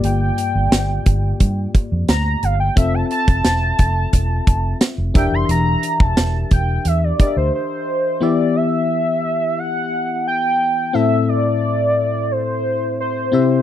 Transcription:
Already playing: G2 A#3 F4 G4 D5
0.04 G1 G5, closed hi-hat
0.38 closed hi-hat
0.55 G1
0.72 G1, snare, closed hi-hat
1.06 G1, kick, closed hi-hat
1.40 G2, kick, closed hi-hat
1.75 kick, closed hi-hat
1.92 F2
2.08 D2 A#5, snare, closed hi-hat
2.43 G1 F5, closed hi-hat
2.60 G5
2.76 F1 C4 F4 A4 E5, kick, closed hi-hat
2.94 A5
3.11 A5, closed hi-hat
3.28 F1, kick, closed hi-hat
3.45 E1, snare, closed hi-hat
3.79 F1, kick, closed hi-hat
4.13 E1, kick, closed hi-hat
4.47 F1, kick, closed hi-hat
4.81 snare, closed hi-hat
4.98 F1
5.14 E1 E3 D4 G4 A#4 E5 G5, kick, closed hi-hat
5.32 F1 C6
5.49 E1 A#5, closed hi-hat
5.83 closed hi-hat
6.00 E1 A5, kick
6.17 E1, snare, closed hi-hat
6.51 E1 G5, kick, closed hi-hat
6.85 E2 E5, closed hi-hat
7.04 D5
7.19 D4 G4 A#4 D5 D#5, kick, closed hi-hat
7.27 E5
7.37 D2 C5
7.55 C5
8.21 E3 B3 E4 G4 D5 E5
8.56 E5
9.59 F#5
10.28 G5
10.93 A2 C4 E4 A4 E5
11.29 D5
12.32 C5
13.00 C5
13.32 C3 C4 E4 G4 E5

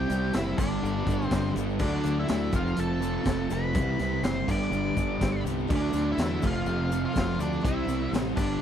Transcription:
Already playing: C3 E3 G3 C4 E4 G4 C5 G5
0.08 C2 C3 G3 C4 E4, snare, closed hi-hat, shaker
0.13 E4 C5
0.24 G3 C4 E4 C5
0.33 F#1 C3 G3 C4 E4 E5, snare, closed hi-hat, tambourine, shaker
0.37 E3 G3 C4 E4 C5
0.49 G3 C4 E4 C5
0.57 G1 G2 D3 G3 B3 D4 D5, kick, crash, shaker
0.62 G4 B4
0.73 shaker
0.82 G1 G2 D3 G3 B3 D4, shaker
0.96 G4 B4
1.06 G1 G2 D3 G3 B3 D4, kick, closed hi-hat, shaker
1.10 D4 G4 B4
1.20 D4 G4 B4, shaker
1.25 C4 C5
1.31 G1 G2 D3 G3 B3 D4 G4 B4, kick, snare, closed hi-hat, tambourine, shaker
1.45 snare
1.55 G1 G2 D3 G3 B3 D4 G4 B4, closed hi-hat, shaker
1.69 shaker
1.79 D2 D3 F#3 A3 D4 F#4 A4 D5, kick, crash, shaker
2.03 D2 D3 F#3 A3 D4 F#4 A4, closed hi-hat, shaker
2.17 D4 E4 F#4 A4 E5
2.28 D2 D3 F#3 A3 D4 F#4 A4, snare, closed hi-hat, tambourine, shaker
2.39 D4 F#4 A4
2.51 F1 F2 C3 F3 A3 C4 F4 A4, kick, closed hi-hat, shaker
2.56 F4 F5
2.67 shaker
2.75 F1 F2 C3 F3 A3 C4 A4, closed hi-hat, shaker
2.80 A5
2.88 C4 F4 A4
2.98 F2 C3 F3 A3 C4 F4 A4, closed hi-hat
3.02 A3 C4, shaker
3.12 C4 F4 A4
3.23 F1 F2 C3 F3 A3 C4 F4 A4, kick, snare, closed hi-hat, tambourine, shaker
3.37 C4 F4 A4
3.48 F1 F2 C3 F3 A3 C4 F4 A4 B4, closed hi-hat, shaker
3.54 B5
3.63 shaker
3.73 C2 C3 E3 G3 C4 E4 C5, kick, closed hi-hat, shaker
3.97 C2 C3 G3 C4 E4 C5, snare, closed hi-hat
4.01 C4
4.10 G3 C4 E4 C5
4.23 F#1 C3 E3 G3 C4 E4 C5 C6, snare, closed hi-hat, tambourine, shaker
4.36 G3 C4 E4 C5
4.47 G1 G2 D3 G3 B3 D4 G4 B4 D5, kick, crash, shaker
4.51 D6
4.62 shaker
4.71 G1 G2 D3 G3 B3 D4, shaker
4.84 D4 G4 B4
4.95 G1 G2 D3 G3 B3 D4 G4 B4, kick, closed hi-hat, shaker
5.08 D4 G4 B4
5.20 G1 G2 D3 G3 B3 D4 G4 B4, kick, snare, closed hi-hat, tambourine, shaker
5.31 D4 G4 B4
5.36 snare
5.43 C2 G2 D3 G3 B3 D4 G4 B4, closed hi-hat, shaker
5.59 shaker
5.67 D2 D3 F#3 A3 D4 F#4 A4, kick, crash, shaker
5.71 D4 D5
5.76 D4
5.92 D2 D3 F#3 A3 D4 F#4 A4, closed hi-hat, shaker
5.97 snare
6.04 D4 F#4 A4
6.11 E4 E5
6.17 E2 D3 F#3 A3 D4 F#4 A4, snare, closed hi-hat, tambourine, shaker
6.29 D4 F#4 A4
6.41 F1 F2 C3 F3 A3 C4 F4 A4, kick, crash, shaker
6.46 F4 F5
6.54 shaker
6.66 F1 F2 C3 F3 A3 C4, shaker
6.77 C4 F4 A4
6.89 F2 C3 F3 A3 C4 F4 A4, closed hi-hat, shaker
6.93 C4
7.01 C4 F4 A4
7.05 F4 F5
7.12 F2 C3 F3 A3 C4 F4 A4, shaker
7.16 F1 C4, kick, snare, closed hi-hat, tambourine
7.23 C4 F4 A4
7.30 snare
7.35 D2 A3 C4 F4 A4
7.39 F2 C3 F3 A3 C4 D4 D5, closed hi-hat, shaker
7.52 shaker
7.60 C3 E3 G3 C4 E4 C5
7.64 C2 C4 E4 E5, kick, closed hi-hat, shaker
7.85 C2 C3 G3 C4 E4 C5, shaker
7.89 G3 C4 E4, snare, closed hi-hat
7.99 G3 C4 E4 C5
8.11 A1 C3 E3 G3 C4 E4 C5, closed hi-hat, tambourine, shaker
8.16 snare
8.24 G3 C4 E4 C5
8.35 G1 G2 D3 G3 B3 D4 G4 B4 D5, kick, crash, shaker
8.39 D4
8.50 shaker

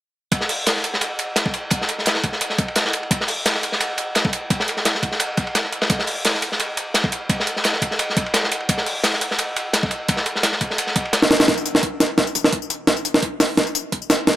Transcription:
0.32 kick, closed hi-hat, ride
0.41 snare
0.49 closed hi-hat, open hi-hat
0.66 snare, closed hi-hat, ride
0.76 snare
0.84 closed hi-hat, ride
0.94 snare
1.01 closed hi-hat, ride
1.19 closed hi-hat, ride
1.36 snare, closed hi-hat, ride
1.46 kick, ride
1.54 closed hi-hat, ride
1.70 kick, closed hi-hat, ride
1.81 snare
1.89 closed hi-hat, ride
1.98 snare
2.05 snare, closed hi-hat, ride
2.15 snare
2.24 kick, closed hi-hat, ride
2.32 snare
2.41 closed hi-hat, ride
2.50 snare
2.58 kick, closed hi-hat, ride
2.68 ride
2.75 snare, closed hi-hat, ride
2.85 snare
2.93 closed hi-hat, ride
3.03 ride
3.11 kick, closed hi-hat, ride
3.21 snare
3.28 closed hi-hat, open hi-hat
3.46 snare, closed hi-hat, ride
3.55 snare
3.63 closed hi-hat, ride
3.72 snare
3.80 closed hi-hat, ride
3.98 closed hi-hat, ride
4.15 snare, closed hi-hat, ride
4.25 kick, ride
4.33 closed hi-hat, ride
4.50 kick, closed hi-hat, ride
4.60 snare
4.68 closed hi-hat, ride
4.77 snare
4.85 snare, closed hi-hat, ride
4.95 snare
5.03 kick, closed hi-hat, ride
5.12 snare
5.20 closed hi-hat, ride
5.37 kick, closed hi-hat, ride
5.47 ride
5.55 snare, closed hi-hat, ride
5.64 snare
5.72 closed hi-hat, ride
5.82 snare, ride
5.90 kick, closed hi-hat, ride
5.99 snare
6.07 closed hi-hat, open hi-hat
6.25 snare, closed hi-hat, ride
6.34 snare
6.42 closed hi-hat, ride
6.52 snare
6.60 closed hi-hat, ride
6.77 closed hi-hat, ride
6.94 snare, closed hi-hat, ride
7.04 kick, ride
7.12 closed hi-hat, ride
7.29 kick, closed hi-hat, ride
7.40 snare
7.47 closed hi-hat, ride
7.56 snare
7.64 snare, closed hi-hat, ride
7.73 snare
7.82 kick, closed hi-hat, ride
7.91 snare
7.99 closed hi-hat, ride
8.10 snare
8.17 kick, closed hi-hat, ride
8.26 ride
8.34 snare, closed hi-hat, ride
8.44 snare
8.52 closed hi-hat, ride
8.60 ride
8.69 kick, closed hi-hat, ride
8.78 snare
8.86 closed hi-hat, open hi-hat
9.04 snare, closed hi-hat, ride
9.13 snare
9.21 closed hi-hat, ride
9.31 snare
9.39 closed hi-hat, ride
9.56 closed hi-hat, ride
9.73 snare, closed hi-hat, ride
9.83 kick, ride
9.91 closed hi-hat, ride
10.09 kick, closed hi-hat, ride
10.17 snare
10.26 closed hi-hat, ride
10.35 snare
10.43 snare, closed hi-hat, ride
10.52 snare
10.61 kick, closed hi-hat, ride
10.70 snare
10.78 closed hi-hat, ride
10.87 snare
10.96 kick, closed hi-hat, ride
11.05 ride
11.13 snare, closed hi-hat, ride
11.22 snare
11.30 snare, closed hi-hat, ride
11.39 snare, ride
11.48 E1, kick, snare, closed hi-hat
11.58 tambourine
11.66 closed hi-hat, tambourine
11.75 snare
11.83 kick, closed hi-hat
12.00 snare, closed hi-hat, tambourine
12.18 kick, snare, closed hi-hat
12.27 tambourine
12.35 E1, closed hi-hat, tambourine
12.44 snare
12.53 kick, closed hi-hat
12.62 tambourine
12.70 closed hi-hat, tambourine
12.87 E1, kick, snare, closed hi-hat
12.97 tambourine
13.05 closed hi-hat, tambourine
13.14 snare
13.22 kick, closed hi-hat
13.40 snare, open hi-hat, tambourine
13.57 kick, snare, closed hi-hat
13.67 tambourine
13.75 closed hi-hat, tambourine
13.92 E1, kick, closed hi-hat
14.02 tambourine
14.10 snare, closed hi-hat, tambourine
14.27 E1, kick, snare, closed hi-hat

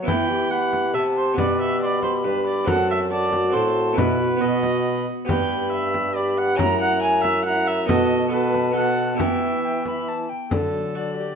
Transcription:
0.03 E3 B3 E4 B4
0.07 E3 E4 G5 B5, frame drum
0.30 G4
0.51 G4 F#5 B5
0.73 frame drum
0.94 C3 E5 A5
1.17 C5
1.34 B2 B3 F#4 B4
1.38 B2 D5 B5, frame drum
1.61 E5
1.82 D5 C6
1.86 B5
2.03 C5, frame drum
2.24 G2 B4
2.47 D5
2.64 F#2 C4 F#4 A4 A#5, frame drum
2.68 F#5 A5
2.91 E5
3.11 F#4 D5 A5
3.32 F#4, frame drum
3.50 A2 C4 F#4 A4 C5
3.55 A2 A5
3.93 B3 E4 B4
3.97 B2 E4 B5, frame drum
4.19 F#4
4.37 B2 B3 F#4 B4
4.41 B2 F#4 D#5 B5
4.63 frame drum
5.25 G2 B3 G4 B4 G5, frame drum
5.29 G2 G4 B5
5.71 E5
5.94 frame drum
6.15 G4 D5 B5
6.38 F#5
6.55 F#2 C#4 E4 F#4 A#5, frame drum
6.81 F#5
7.02 G#5
7.23 E5, frame drum
7.45 E4 F#5 A#5
7.67 E5
7.86 B2 B3 F#4 A4 D#5, frame drum
7.90 A5
8.29 B3 F#4 A4 B4 A5
8.54 frame drum
8.72 B3 F#4 A4
8.76 F#4 F#5 A5
9.15 E3 B3 E4 G4
9.19 E3 E4 E5 G5, frame drum
9.64 G5
9.86 B5, frame drum
10.09 A5
10.29 G5
10.51 D3 F#3 A4, frame drum
10.95 F#4 D5
11.16 G4

